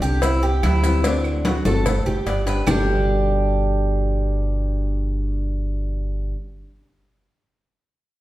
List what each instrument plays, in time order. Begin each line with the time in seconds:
0.02 upright bass C2, nylon-string guitar G3 D4 G4, cuban tres G4, maracas
0.22 cuban tres E4, muted nylon-string guitar stroke, cowbell, high conga, maracas
0.43 cuban tres G4, high conga, maracas
0.63 upright bass D2, cuban tres E4, cowbell, high conga, claves, maracas
0.83 nylon-string guitar E3 G3 C4 E4, cowbell, maracas
1.04 nylon-string guitar D3 A3 C4 F#4, cuban tres D4, cowbell, high conga, maracas
1.24 high conga, claves, maracas
1.45 cuban tres F#4, cowbell, high conga, maracas
1.65 upright bass G1, nylon-string guitar A3 C4 F#4, cuban tres A4, high conga, maracas
1.85 muted nylon-string guitar stroke, cowbell, high conga, low conga, claves, maracas
2.06 upright bass F#1, cuban tres G4, high conga, low conga, maracas
2.26 upright bass G1, cuban tres D5, cowbell, high conga, maracas
2.46 nylon-string guitar G3 D4 G4, cuban tres B4, cowbell, maracas
2.66 upright bass G1, nylon-string guitar G2 B2 D3 G3 B3 G4, cuban tres G3 D4 G4, low bongo, low conga, claves, maracas